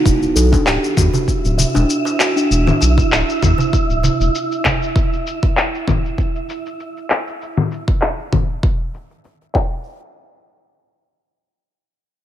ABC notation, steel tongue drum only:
X:1
M:4/4
L:1/16
Q:"Swing 16ths" 1/4=98
K:Dmix
V:1 name="Steel tongue drum"
E z A D G z F z3 e D z2 F D | z16 | z16 | z16 |
z16 |]